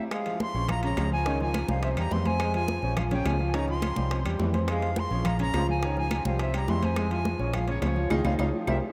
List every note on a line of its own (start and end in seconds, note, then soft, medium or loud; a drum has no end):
0.11 0.34 G#3 medium
0.11 0.39 F5 loud
0.11 high bongo medium
0.11 high conga soft
0.11 high timbale medium
0.11 claves medium
0.26 0.50 F3 medium
0.26 0.50 F4 medium
0.26 0.50 F5 medium
0.26 high bongo soft
0.26 high conga soft
0.26 high timbale medium
0.40 0.68 C6 loud
0.40 high bongo medium
0.40 high conga loud
0.40 low timbale medium
0.54 0.94 A#1 loud
0.54 0.77 F3 medium
0.54 0.67 C#4 medium
0.54 0.67 C#5 medium
0.54 0.67 C#6 medium
0.54 high bongo soft
0.54 high conga soft
0.68 0.81 F3 medium
0.68 0.81 F4 medium
0.68 0.81 F5 medium
0.68 0.83 A#5 loud
0.68 high bongo medium
0.68 high conga soft
0.68 low conga medium
0.68 high timbale medium
0.68 claves medium
0.83 1.07 C#3 medium
0.83 1.07 C#4 medium
0.83 1.07 C#5 medium
0.83 1.10 A#5 loud
0.83 high bongo soft
0.83 high conga soft
0.83 high timbale medium
0.97 1.63 C#2 medium
0.97 1.12 F3 medium
0.97 high bongo soft
0.97 low bongo medium
0.97 high conga medium
0.97 high timbale loud
0.97 low timbale medium
0.97 claves medium
1.12 1.24 F3 medium
1.12 1.24 F4 medium
1.12 1.24 F5 medium
1.12 1.39 G#5 loud
1.12 high conga soft
1.25 1.38 C#3 loud
1.25 1.48 D#3 loud
1.25 1.38 C#4 medium
1.25 1.38 C#5 medium
1.25 high bongo medium
1.25 high conga soft
1.25 high timbale medium
1.40 1.64 F3 medium
1.40 1.64 F4 medium
1.40 1.64 F5 medium
1.40 1.67 G#5 loud
1.40 high bongo soft
1.40 high conga soft
1.54 high bongo medium
1.54 high conga loud
1.54 high timbale loud
1.54 low timbale medium
1.54 claves medium
1.68 1.95 C2 loud
1.68 1.91 F3 medium
1.68 1.80 G3 medium
1.68 1.81 G4 medium
1.68 1.83 F5 medium
1.68 1.81 G5 medium
1.68 high bongo soft
1.68 high conga medium
1.83 1.95 C4 medium
1.83 1.95 C5 medium
1.83 1.90 E5 medium
1.83 1.95 C6 medium
1.83 high bongo medium
1.83 high conga soft
1.83 high timbale medium
1.97 2.10 E2 medium
1.97 2.21 G3 medium
1.97 2.21 G4 medium
1.97 2.21 G5 medium
1.97 2.14 A#5 loud
1.97 high bongo soft
1.97 high conga soft
1.97 high timbale medium
1.97 claves medium
2.11 2.77 F2 medium
2.11 2.26 E3 medium
2.11 2.28 C6 medium
2.11 high bongo soft
2.11 low bongo medium
2.11 high conga medium
2.11 low timbale medium
2.25 2.49 C4 medium
2.25 2.49 C5 medium
2.25 2.55 G#5 loud
2.25 2.50 C6 medium
2.25 high conga medium
2.25 high timbale medium
2.39 2.62 G#3 medium
2.39 high bongo medium
2.39 high conga soft
2.39 high timbale medium
2.39 claves medium
2.54 2.78 F3 medium
2.54 2.78 F4 medium
2.54 2.78 F5 medium
2.54 2.95 G#5 loud
2.54 high bongo soft
2.54 high conga soft
2.54 high timbale medium
2.68 high bongo medium
2.68 high conga loud
2.68 low timbale medium
2.82 3.22 A#1 medium
2.82 3.05 F3 medium
2.82 2.95 C#4 medium
2.82 2.95 C#5 medium
2.82 2.95 C#6 medium
2.82 high bongo soft
2.82 high conga soft
2.97 3.09 F3 medium
2.97 3.09 F4 medium
2.97 3.09 F5 medium
2.97 3.04 F5 medium
2.97 high bongo medium
2.97 high conga soft
2.97 low conga medium
2.97 high timbale medium
2.97 claves medium
3.11 3.35 C#3 medium
3.11 3.35 C#4 medium
3.11 3.35 C#5 medium
3.11 3.28 G5 medium
3.11 high bongo soft
3.11 high conga soft
3.11 low conga medium
3.11 high timbale medium
3.25 3.91 C#2 medium
3.25 3.40 F3 medium
3.25 3.56 G#5 loud
3.25 high bongo soft
3.25 low bongo medium
3.25 high conga medium
3.25 high timbale loud
3.25 low timbale medium
3.25 claves medium
3.39 3.52 F3 medium
3.39 3.52 F4 medium
3.39 3.52 F5 medium
3.39 high conga soft
3.54 3.66 C#3 medium
3.54 3.76 D#3 medium
3.54 3.66 C#4 medium
3.54 3.66 C#5 loud
3.54 3.69 A#5 loud
3.54 high bongo medium
3.54 high conga soft
3.54 high timbale medium
3.68 3.92 F3 medium
3.68 3.92 F4 medium
3.68 3.92 F5 medium
3.68 4.22 C6 loud
3.68 high bongo soft
3.68 high conga soft
3.82 high bongo medium
3.82 high conga medium
3.82 high timbale loud
3.82 low timbale medium
3.82 claves medium
3.96 4.23 C2 medium
3.96 4.19 F3 medium
3.96 4.09 G3 medium
3.96 4.09 G4 medium
3.96 4.09 G5 medium
3.96 high bongo soft
3.96 high conga medium
4.11 4.23 C4 medium
4.11 4.23 C5 medium
4.11 4.23 C6 medium
4.11 high bongo medium
4.11 high conga soft
4.11 high timbale medium
4.25 4.38 E2 medium
4.25 4.49 G3 medium
4.25 4.49 G4 medium
4.25 4.49 G5 medium
4.25 high bongo soft
4.25 high conga soft
4.25 high timbale loud
4.25 claves medium
4.39 5.05 F2 medium
4.39 4.55 E3 medium
4.39 high bongo soft
4.39 low bongo medium
4.39 high conga medium
4.39 low timbale medium
4.54 4.77 C4 medium
4.54 4.78 C5 medium
4.54 4.78 C6 medium
4.54 high conga medium
4.54 high timbale medium
4.68 4.90 G#3 medium
4.68 5.00 F5 loud
4.68 high bongo medium
4.68 high timbale medium
4.68 claves medium
4.82 5.06 F3 medium
4.82 5.06 F4 medium
4.82 5.06 F5 medium
4.82 high bongo soft
4.82 high conga soft
4.82 high timbale medium
4.96 5.29 C6 loud
4.96 high bongo medium
4.96 high conga loud
4.96 low timbale medium
5.11 5.51 A#1 loud
5.11 5.33 F3 medium
5.11 5.23 C#4 medium
5.11 5.23 C#5 medium
5.11 5.23 C#6 medium
5.11 high bongo soft
5.11 high conga soft
5.25 5.37 F3 medium
5.25 5.37 F4 medium
5.25 5.37 F5 medium
5.25 5.40 A#5 medium
5.25 high bongo medium
5.25 high conga soft
5.25 low conga medium
5.25 high timbale medium
5.25 claves medium
5.39 5.63 C#3 medium
5.39 5.63 C#4 medium
5.39 5.63 C#5 medium
5.39 5.67 A#5 loud
5.39 high bongo soft
5.39 high conga soft
5.39 low conga medium
5.39 high timbale medium
5.54 6.20 C#2 medium
5.54 5.69 F3 medium
5.54 high bongo soft
5.54 low bongo medium
5.54 high conga medium
5.54 high timbale loud
5.54 low timbale medium
5.54 claves medium
5.68 5.80 F3 medium
5.68 5.80 F4 medium
5.68 5.80 F5 medium
5.68 5.96 G#5 medium
5.68 high conga soft
5.82 5.94 C#3 medium
5.82 6.05 D#3 medium
5.82 5.95 C#4 medium
5.82 5.95 C#5 loud
5.82 high bongo medium
5.82 high conga soft
5.82 high timbale medium
5.97 6.20 F3 medium
5.97 6.21 F4 medium
5.97 6.21 F5 medium
5.97 6.24 G#5 loud
5.97 high bongo soft
5.97 high conga soft
6.11 high bongo medium
6.11 high conga medium
6.11 high timbale loud
6.11 low timbale medium
6.11 claves medium
6.25 6.65 C2 loud
6.25 6.47 F3 medium
6.25 6.37 G3 medium
6.25 6.37 G4 medium
6.25 6.39 F5 medium
6.25 6.38 G5 medium
6.25 high bongo soft
6.25 high conga medium
6.39 6.52 C4 medium
6.39 6.52 C5 medium
6.39 6.54 E5 medium
6.39 6.52 C6 medium
6.39 high bongo medium
6.39 high conga soft
6.39 high timbale medium
6.54 6.77 G3 medium
6.54 6.78 G4 medium
6.54 6.78 G5 medium
6.54 6.71 A#5 medium
6.54 high bongo soft
6.54 high conga soft
6.54 high timbale loud
6.54 claves medium
6.67 7.34 F2 medium
6.67 6.82 E3 medium
6.67 6.86 C6 loud
6.67 high bongo soft
6.67 low bongo medium
6.67 high conga medium
6.67 low timbale medium
6.82 7.06 C4 medium
6.82 7.06 C5 medium
6.82 7.12 G#5 loud
6.82 7.06 C6 medium
6.82 high conga medium
6.82 high timbale medium
6.96 7.19 G#3 medium
6.96 high bongo medium
6.96 high conga soft
6.96 high timbale medium
6.96 claves medium
7.11 7.34 F3 medium
7.11 7.34 F4 medium
7.11 7.35 F5 medium
7.11 7.56 G#5 loud
7.11 high bongo soft
7.11 high conga soft
7.11 high timbale medium
7.25 high bongo medium
7.25 high conga loud
7.25 low timbale medium
7.39 7.79 A#1 loud
7.39 7.62 F3 medium
7.39 7.51 C#4 medium
7.39 7.51 C#5 medium
7.39 7.51 C#6 medium
7.39 high bongo soft
7.39 high conga soft
7.54 7.65 F3 medium
7.54 7.65 F4 medium
7.54 7.66 F5 medium
7.54 7.69 F5 medium
7.54 high bongo medium
7.54 high conga soft
7.54 low conga medium
7.54 high timbale medium
7.54 claves medium
7.68 7.91 C#3 medium
7.68 7.91 C#4 medium
7.68 7.92 C#5 medium
7.68 7.82 C#5 medium
7.68 high bongo soft
7.68 high conga soft
7.68 high timbale medium
7.82 8.08 C#2 medium
7.82 7.97 F3 medium
7.82 8.09 C#5 medium
7.82 high bongo soft
7.82 low bongo medium
7.82 high conga medium
7.82 high timbale loud
7.82 low timbale medium
7.82 claves medium
7.96 8.08 F3 medium
7.96 8.08 F4 medium
7.96 8.09 F5 medium
7.96 high conga soft
8.10 8.21 C#2 loud
8.10 8.33 D#3 medium
8.10 8.20 D#4 loud
8.10 8.20 F4 loud
8.10 8.20 G#4 loud
8.10 8.21 F5 medium
8.10 low bongo loud
8.10 high conga loud
8.10 high timbale medium
8.10 claves loud
8.25 8.35 C#2 medium
8.25 8.34 D#4 loud
8.25 8.34 F4 medium
8.25 8.34 G#4 medium
8.25 8.34 F5 medium
8.25 low bongo medium
8.25 high conga loud
8.25 high timbale loud
8.25 claves loud
8.39 8.50 C#2 medium
8.39 8.48 D#4 medium
8.39 8.48 F4 medium
8.39 8.48 G#4 medium
8.39 8.49 F5 medium
8.39 low bongo loud
8.39 high conga loud
8.39 high timbale loud
8.39 claves medium
8.53 8.76 F3 medium
8.67 8.78 C2 loud
8.67 8.77 G4 medium
8.67 8.77 A#4 medium
8.67 8.77 C5 medium
8.67 8.77 E5 medium
8.67 low bongo loud
8.67 high conga loud
8.67 high timbale loud
8.67 claves medium